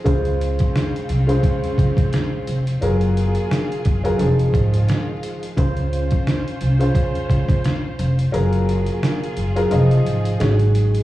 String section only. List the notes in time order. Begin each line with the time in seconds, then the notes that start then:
0.06 C4 C#4 F4
2.82 A#3 F4 G#4
4.20 D#3 G#3 F4
5.58 C#4 F4 C5
8.33 A#3 F4 G#4
9.71 D#4
10.40 F#3 C#4